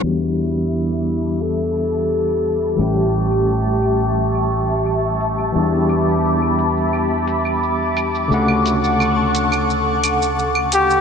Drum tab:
HH |--x---x---x---x-|--x---x---x---x-|--x---x---x---x-|--x---x---x---x-|
SH |--x-x-xx--xxx-xx|x-xxx-xxx-xxx-xx|x-xxx-xxx-xxx-xx|x-xxx-xxx-xxx-xx|
CL |-x--x--x--x--x--|x--x--x--x--x--x|--x--x--x--x--x-|-x--x--x--x--x--|